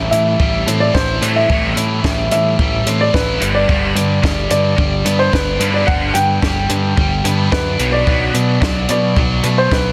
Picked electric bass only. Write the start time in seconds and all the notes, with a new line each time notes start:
0.11 A2
0.40 A1
0.67 A2
0.95 A1
1.21 A2
1.50 A1
1.76 A2
2.04 A1
2.31 A2
2.59 A1
2.86 A2
3.14 A1
3.41 G1
3.69 G1
3.95 G2
4.24 G1
4.50 G2
4.78 G1
5.05 G2
5.33 G1
5.59 G2
5.88 G1
6.14 G2
6.42 G1
6.69 G2
6.97 G1
7.24 G2
7.52 F#2
7.79 B1
8.07 B1
8.34 B2
8.61 B1
8.89 B2
9.16 B1
9.44 B2
9.71 B1